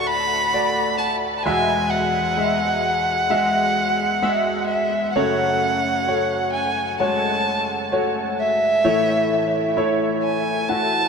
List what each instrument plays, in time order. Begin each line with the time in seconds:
Already playing: grand piano D2 A2 A3 F#4 D5
0.00 violin C#6
0.07 violin B5
0.54 grand piano A3 F#4 D5
0.98 violin A5
1.38 violin A5
1.43 grand piano E2 B2 G#3 F#4 E5, violin G#5
1.90 violin F#5
2.37 grand piano G#3 F#4 E5
3.30 grand piano G#3 F#4 E5
4.22 grand piano G#3 F#4 E5
4.67 violin E5
5.13 grand piano F#2 C#3 A3 F#4 C#5, violin F#5
6.08 grand piano A3 F#4 C#5
6.53 violin G#5
7.00 grand piano G#3 F#4 C#5, violin A5
7.07 grand piano A3
7.92 grand piano A3 F#4 C#5
8.39 violin E5
8.84 grand piano A2 E3 A3 E4 C#5
9.77 grand piano A3 E4 C#5
10.23 violin G#5
10.69 grand piano A3 E4 F#4, violin A5